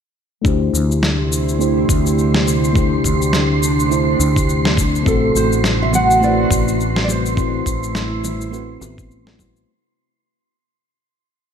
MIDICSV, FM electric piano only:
0, 0, Header, 1, 2, 480
1, 0, Start_track
1, 0, Tempo, 576923
1, 372, Time_signature, 4, 2, 24, 8
1, 9595, End_track
2, 0, Start_track
2, 0, Title_t, "FM electric piano"
2, 0, Program_c, 0, 5
2, 346, Note_on_c, 0, 57, 77
2, 360, Note_on_c, 0, 62, 67
2, 372, Note_on_c, 0, 64, 69
2, 384, Note_on_c, 0, 67, 72
2, 395, Note_on_c, 0, 72, 77
2, 542, Control_c, 0, 64, 127
2, 1294, Note_off_c, 0, 57, 0
2, 1301, Note_off_c, 0, 62, 0
2, 1307, Note_off_c, 0, 64, 0
2, 1314, Note_off_c, 0, 67, 0
2, 1319, Note_off_c, 0, 72, 0
2, 1320, Note_on_c, 0, 57, 76
2, 1325, Note_on_c, 0, 62, 74
2, 1331, Note_on_c, 0, 64, 68
2, 1337, Note_on_c, 0, 67, 73
2, 1342, Note_on_c, 0, 72, 89
2, 1465, Note_off_c, 0, 57, 0
2, 1467, Note_off_c, 0, 62, 0
2, 1470, Note_off_c, 0, 64, 0
2, 1473, Note_off_c, 0, 67, 0
2, 1476, Note_off_c, 0, 72, 0
2, 2266, Note_on_c, 0, 57, 80
2, 2278, Note_on_c, 0, 62, 66
2, 2290, Note_on_c, 0, 64, 72
2, 2301, Note_on_c, 0, 67, 66
2, 2312, Note_on_c, 0, 72, 84
2, 3215, Note_off_c, 0, 57, 0
2, 3221, Note_off_c, 0, 62, 0
2, 3227, Note_off_c, 0, 64, 0
2, 3232, Note_off_c, 0, 67, 0
2, 3235, Note_on_c, 0, 57, 78
2, 3238, Note_off_c, 0, 72, 0
2, 3241, Note_on_c, 0, 62, 70
2, 3248, Note_on_c, 0, 64, 71
2, 3256, Note_on_c, 0, 67, 69
2, 3262, Note_on_c, 0, 72, 92
2, 3382, Note_off_c, 0, 57, 0
2, 3385, Note_off_c, 0, 62, 0
2, 3389, Note_off_c, 0, 64, 0
2, 3393, Note_off_c, 0, 67, 0
2, 3396, Note_off_c, 0, 72, 0
2, 4182, Note_on_c, 0, 57, 80
2, 4196, Note_on_c, 0, 60, 69
2, 4206, Note_on_c, 0, 64, 74
2, 4219, Note_on_c, 0, 66, 73
2, 4224, Control_c, 0, 64, 0
2, 4232, Note_on_c, 0, 72, 88
2, 4347, Control_c, 0, 64, 127
2, 5133, Note_off_c, 0, 57, 0
2, 5140, Note_off_c, 0, 60, 0
2, 5145, Note_off_c, 0, 64, 0
2, 5151, Note_off_c, 0, 66, 0
2, 5158, Note_off_c, 0, 72, 0
2, 5162, Note_on_c, 0, 57, 79
2, 5167, Note_on_c, 0, 60, 75
2, 5173, Note_on_c, 0, 64, 69
2, 5179, Note_on_c, 0, 66, 72
2, 5186, Note_on_c, 0, 71, 90
2, 5306, Note_off_c, 0, 57, 0
2, 5308, Note_off_c, 0, 60, 0
2, 5311, Note_off_c, 0, 64, 0
2, 5314, Note_off_c, 0, 66, 0
2, 5318, Note_off_c, 0, 71, 0
2, 6112, Note_on_c, 0, 57, 80
2, 6125, Note_on_c, 0, 60, 69
2, 6135, Note_on_c, 0, 64, 78
2, 6149, Note_on_c, 0, 66, 68
2, 6159, Note_on_c, 0, 72, 86
2, 7058, Note_off_c, 0, 57, 0
2, 7064, Note_off_c, 0, 60, 0
2, 7069, Note_off_c, 0, 64, 0
2, 7076, Note_off_c, 0, 66, 0
2, 7078, Note_on_c, 0, 57, 85
2, 7081, Note_off_c, 0, 72, 0
2, 7083, Note_on_c, 0, 60, 72
2, 7091, Note_on_c, 0, 64, 73
2, 7096, Note_on_c, 0, 66, 75
2, 7101, Note_on_c, 0, 71, 91
2, 7224, Note_off_c, 0, 57, 0
2, 7226, Note_off_c, 0, 60, 0
2, 7230, Note_off_c, 0, 64, 0
2, 7233, Note_off_c, 0, 66, 0
2, 7235, Note_off_c, 0, 71, 0
2, 7320, Note_on_c, 0, 57, 99
2, 7326, Note_on_c, 0, 60, 86
2, 7331, Note_on_c, 0, 64, 86
2, 7338, Note_on_c, 0, 66, 82
2, 7345, Note_on_c, 0, 59, 103
2, 7671, Note_off_c, 0, 57, 0
2, 7674, Note_off_c, 0, 60, 0
2, 7677, Note_off_c, 0, 64, 0
2, 7680, Note_off_c, 0, 66, 0
2, 7684, Note_off_c, 0, 59, 0
2, 7698, Note_on_c, 0, 57, 79
2, 7703, Note_on_c, 0, 60, 67
2, 7709, Note_on_c, 0, 64, 74
2, 7716, Note_on_c, 0, 66, 66
2, 7723, Note_on_c, 0, 71, 83
2, 7781, Note_off_c, 0, 57, 0
2, 7784, Note_off_c, 0, 60, 0
2, 7787, Note_off_c, 0, 64, 0
2, 7790, Note_off_c, 0, 66, 0
2, 7794, Note_off_c, 0, 71, 0
2, 7800, Note_on_c, 0, 57, 75
2, 7806, Note_on_c, 0, 60, 71
2, 7813, Note_on_c, 0, 64, 71
2, 7820, Note_on_c, 0, 66, 69
2, 7823, Note_on_c, 0, 72, 80
2, 8022, Note_off_c, 0, 57, 0
2, 8025, Note_off_c, 0, 60, 0
2, 8028, Note_off_c, 0, 64, 0
2, 8032, Note_off_c, 0, 66, 0
2, 8033, Note_off_c, 0, 72, 0
2, 8062, Control_c, 0, 64, 0
2, 9595, End_track
0, 0, End_of_file